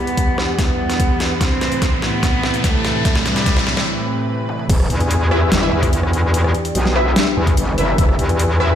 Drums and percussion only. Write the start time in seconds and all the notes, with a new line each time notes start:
0.07 closed hi-hat
0.17 kick, closed hi-hat
0.38 cross-stick, snare
0.59 kick, snare, closed hi-hat
0.90 snare, closed hi-hat
1.00 kick, closed hi-hat
1.20 snare, closed hi-hat
1.41 kick, snare, closed hi-hat
1.61 snare, closed hi-hat
1.72 closed hi-hat
1.82 kick, snare, closed hi-hat
2.02 snare
2.23 kick, snare, closed hi-hat
2.43 snare
2.54 closed hi-hat
2.64 kick, snare, closed hi-hat
2.85 snare, closed hi-hat
3.05 kick, snare, closed hi-hat
3.16 snare
3.26 snare, closed hi-hat
3.36 snare, closed hi-hat
3.46 kick, snare, closed hi-hat
3.57 snare
3.67 snare
3.77 snare
4.49 high tom
4.59 mid tom
4.70 kick, closed hi-hat, crash
4.80 cross-stick
4.90 closed hi-hat
5.00 closed hi-hat
5.11 closed hi-hat
5.31 cross-stick
5.52 snare, closed hi-hat
5.83 kick, cross-stick, closed hi-hat
5.93 closed hi-hat
6.03 cross-stick
6.13 closed hi-hat
6.34 closed hi-hat
6.44 cross-stick
6.55 closed hi-hat
6.65 closed hi-hat
6.75 closed hi-hat
6.86 snare
6.96 cross-stick
7.16 snare, closed hi-hat
7.47 kick, closed hi-hat
7.57 closed hi-hat
7.78 closed hi-hat
7.98 kick, closed hi-hat
8.09 cross-stick
8.19 closed hi-hat
8.29 closed hi-hat
8.39 closed hi-hat
8.60 cross-stick